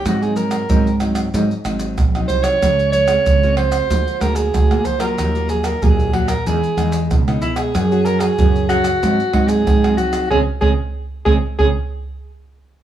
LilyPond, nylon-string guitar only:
\new Staff \with { instrumentName = "Nylon-string guitar" } { \time 4/4 \key des \major \tempo 4 = 94 << { <ges c' ees'>16 <ges c' ees'>8. <ges c' ees'>16 r16 <ges c' ees'>8 <ges c' ees'>16 r16 <ges c' ees'>8 r16 <ges c' ees'>8. | <aes f'>8 r16 <aes c' f'>8 <aes c' f'>8. <aes bes f'>8 <aes bes f'>8 r16 <aes bes f'>8 <ges bes f'>16~ | <ges bes f'>16 <ges bes f'>8. <ges bes f'>8 <ges bes f'>16 r16 <gis b dis'>8 <gis b dis'>8. <gis b dis'>8. | <des' ges' aes'>16 <des' ges' aes'>8. <des' ges' aes'>8 <des' ges' aes'>16 r16 <ges c' ees'>16 r16 <ges c' ees'>8. <ges c' ees'>8. |
<aes c' des'>8 <aes c' des'>8 r8 <aes c' des'>8 <aes c' des'>8 r4. | } \\ { aes,4 ees4 aes,4 ees4 | des4 aes,4 d4 d4 | ees4 bes,4 e4 b,4 | ges4 des4 aes,4 ees4 |
r1 | } >> }